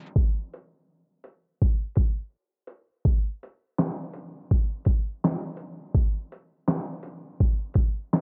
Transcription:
0.06 shaker
0.16 kick
0.54 closed hi-hat
1.24 closed hi-hat
1.62 kick
1.95 kick, closed hi-hat
2.67 closed hi-hat
3.05 kick
3.43 closed hi-hat
3.79 snare, clap
4.13 closed hi-hat
4.51 kick
4.85 kick, closed hi-hat
5.24 snare, clap
5.57 closed hi-hat
5.95 kick
6.32 closed hi-hat
6.68 snare, clap
7.03 closed hi-hat
7.40 kick
7.74 kick, closed hi-hat
8.13 snare, clap

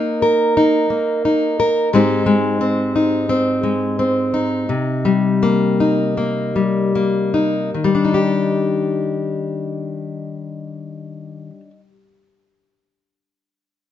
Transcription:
Already playing: A#3 D#4 A#4
0.22 A#4
0.57 D#4
0.90 A#3
1.25 D#4
1.60 A#4
1.93 G#2 G#3 C4 D#4 G4
2.26 G#3
2.61 C4
2.96 D#4
3.29 C4
3.63 G#3
3.99 C4
4.34 D#4
4.69 C3
5.05 G3
5.43 A#3
5.80 D#4
6.17 A#3
6.56 G3
6.95 A#3
7.34 D#4
7.74 D#3
7.84 G3
7.95 D4
8.05 D#4
8.14 G4

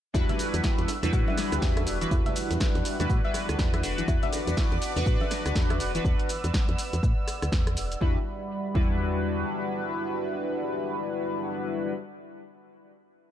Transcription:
0.14 E2 G3 D4 E4 F#4 B4 D5 F#5 E6, kick, closed hi-hat, shaker
0.29 E5, snare, closed hi-hat, low conga
0.39 closed hi-hat, open hi-hat, high bongo, shaker
0.54 E2, snare, closed hi-hat, high conga, shaker
0.64 E4, kick, snare, closed hi-hat, shaker
0.78 E2, snare, closed hi-hat
0.88 closed hi-hat, open hi-hat, high bongo, shaker
1.03 E2 G3 D4 E4 F#4 B4, closed hi-hat, low conga, shaker
1.13 A2 F#4, kick, closed hi-hat, shaker
1.28 E5, snare, high bongo, high conga
1.38 cross-stick, snare, closed hi-hat, open hi-hat, shaker
1.52 D2, cross-stick, snare, closed hi-hat, shaker
1.62 E2, kick, snare, open hi-hat, shaker
1.77 E5, cross-stick, closed hi-hat, high bongo, high conga
1.87 E1, closed hi-hat, open hi-hat, shaker
2.01 E3 G3 D4 E4 F#4 B4, snare, closed hi-hat, shaker
2.11 E2 E4 F#6, kick, closed hi-hat, high bongo, shaker
2.26 E5, snare, closed hi-hat, low conga
2.36 snare, closed hi-hat, open hi-hat, shaker
2.50 E2, snare, closed hi-hat, high conga, shaker
2.60 E4, kick, snare, closed hi-hat, high bongo, shaker
2.75 E2, snare, closed hi-hat
2.85 closed hi-hat, open hi-hat, shaker
3.00 E2 G3 D4 E4 F#4 B4, closed hi-hat, high bongo, low conga, shaker
3.10 A2 F#4, kick, closed hi-hat, shaker
3.24 G3 D4 E4 F#4 B4 E5
3.34 cross-stick, closed hi-hat, open hi-hat, high conga, shaker
3.49 D2, cross-stick, snare, closed hi-hat, high bongo, shaker
3.59 E2, kick, snare, closed hi-hat, shaker
3.73 E5, cross-stick, snare, closed hi-hat, high conga
3.83 E1 D4 F#4 B4, closed hi-hat, open hi-hat, high bongo, shaker
3.98 E3, closed hi-hat, high conga, shaker
4.08 E2 E4 B4 D5 D6, kick, closed hi-hat, shaker
4.23 E5, snare, closed hi-hat, low conga
4.32 closed hi-hat, open hi-hat, high bongo, shaker
4.47 E2, snare, closed hi-hat, high conga, shaker
4.57 E4, kick, snare, closed hi-hat, shaker
4.71 E2, snare, closed hi-hat, high bongo
4.82 closed hi-hat, open hi-hat, shaker
4.96 E2 D4 F#4 B4, closed hi-hat, low conga, shaker
5.06 A2 F#4, kick, closed hi-hat, shaker
5.20 E5, snare, high bongo, high conga
5.31 cross-stick, snare, closed hi-hat, open hi-hat, shaker
5.46 D2, cross-stick, snare, closed hi-hat, shaker
5.55 E2, kick, snare, open hi-hat, high bongo, shaker
5.70 E5, cross-stick, closed hi-hat, high conga
5.80 E1, closed hi-hat, open hi-hat, shaker
5.95 E3 D4 F#4 B4, snare, closed hi-hat, shaker
6.05 E2 E6, kick, shaker
6.20 closed hi-hat
6.29 open hi-hat, shaker
6.44 E2, closed hi-hat, shaker
6.54 kick, snare, shaker
6.69 E2, closed hi-hat
6.78 open hi-hat, shaker
6.93 E2, closed hi-hat, shaker
7.03 A2, kick, shaker
7.28 cross-stick, open hi-hat, shaker
7.42 D2, cross-stick, closed hi-hat, shaker
7.52 E2, kick, snare, shaker
7.67 cross-stick, closed hi-hat
7.77 E1, open hi-hat, shaker
7.92 closed hi-hat, shaker
8.01 E2 G3 D4 E4 F#4 B4 D5 E5 F#5 B5, kick
8.74 E2 G3 D4 E4 F#4 B4, kick

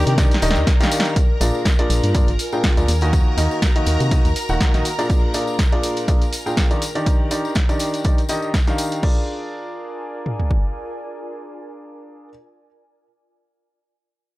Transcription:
Already playing: D#3 D4 D#4 G4 A#4 D5 G5 A#5
0.07 C3 G4, closed hi-hat, tambourine
0.18 D#3 D4 D#4 G4 A#4 D5, kick, snare, closed hi-hat, tambourine
0.31 snare, closed hi-hat, tambourine
0.42 D#1 D#3 D4 D#4 G4 A#4 D#5, open hi-hat, tambourine
0.51 snare
0.56 D#2, tambourine
0.67 kick, snare, closed hi-hat, tambourine
0.80 D#3 D4 D#4 G4 A#4 F5, snare, closed hi-hat, tambourine
0.91 open hi-hat, tambourine
1.00 snare
1.05 closed hi-hat, tambourine
1.16 F4 A#4 A#5, kick, closed hi-hat, tambourine
1.41 A#1 A#2 D4 F4 G#4 A#4 D5, open hi-hat, tambourine
1.55 tambourine
1.65 kick, snare, closed hi-hat, tambourine
1.79 A#2 D4 F4 G#4 A#4 D5, closed hi-hat
1.90 A#1, open hi-hat, tambourine
2.00 G2 G#5, closed hi-hat, tambourine
2.14 A#2 D4 F4 G#4 A#4 D5, kick, closed hi-hat, tambourine
2.28 G#1, closed hi-hat, tambourine
2.39 open hi-hat, tambourine
2.52 A#2 D4 F4 G#4 A#4 G5, tambourine
2.64 kick, snare, closed hi-hat, tambourine
2.77 D2 A#2 D4 F4 G#4 A#4 D5, closed hi-hat, tambourine
2.88 D#2, open hi-hat, tambourine
3.01 D#3 A#3 D#4 F#4 A#4 D#5, closed hi-hat, tambourine
3.13 F#4, kick, closed hi-hat, tambourine
3.33 D#5
3.37 D#2 D#3 A#3 D#4 F#4 A#4 D#5, open hi-hat, tambourine
3.51 tambourine
3.62 kick, snare, closed hi-hat, tambourine
3.76 D#3 A#3 D#4 F#4 A#4 D#5, closed hi-hat
3.86 D#2, open hi-hat, tambourine
3.95 A#5
4.00 C3, closed hi-hat, tambourine
4.11 D#3 A#3 D#4 F#4 A#4 D#5, kick, closed hi-hat, tambourine
4.25 D#2, closed hi-hat, tambourine
4.36 open hi-hat, tambourine
4.49 D#1 D#3 A#3 D#4 F#4 A#4 F#5, tambourine
4.61 kick, snare, closed hi-hat, tambourine
4.74 A#1 D#3 A#3 D#4 F#4 A#4 D#5, snare, closed hi-hat, tambourine
4.85 open hi-hat, tambourine
4.99 A#2 D4 F4 G#4 A#4 D5, closed hi-hat, tambourine
5.10 F4, kick, closed hi-hat, tambourine
5.34 A#2 D4 F4 G#4 A#4 D5, open hi-hat, tambourine
5.47 tambourine
5.59 kick, snare, closed hi-hat, tambourine
5.69 A#2 D4 F4 G#4 A#4 D5, closed hi-hat
5.83 open hi-hat, tambourine
5.88 G#5
5.97 closed hi-hat, tambourine
6.08 A#2 D4 F4 G#4 A#4 D5, kick, closed hi-hat, tambourine
6.22 closed hi-hat, tambourine
6.33 open hi-hat, tambourine
6.46 A#2 D4 F4 G#4 A#4 G5, tambourine
6.57 kick, snare, closed hi-hat, tambourine
6.71 D#3 D4 F4 G#4 A#4 D5, closed hi-hat, tambourine
6.82 D#3, open hi-hat, tambourine
6.95 D#3 D4 D#4 G4 A#4 D5, closed hi-hat, tambourine
7.06 kick, closed hi-hat, tambourine
7.31 D#3 D4 D#4 G4 A#4 D5 G5, open hi-hat, tambourine
7.45 tambourine
7.55 kick, snare, closed hi-hat, tambourine
7.69 D#3 D4 D#4 G4 A#4 D5, closed hi-hat, tambourine
7.79 open hi-hat, tambourine
7.94 closed hi-hat, tambourine
8.04 D#3 D4 D#4 G4 A#4 D5, kick, closed hi-hat, tambourine
8.18 closed hi-hat, tambourine
8.29 D#3 D4 D#4 G4 A#4 D#5, open hi-hat, tambourine
8.42 tambourine
8.54 kick, snare, closed hi-hat, tambourine
8.67 D#3 D4 D#4 G4 A#4 F5, snare, closed hi-hat, tambourine
8.78 open hi-hat, tambourine
8.92 closed hi-hat, tambourine
9.03 D4 F4 G#4 A#4 D5, kick, crash
9.11 A#4
9.19 D5
9.26 G#5
10.26 mid tom
10.40 floor tom
10.51 kick

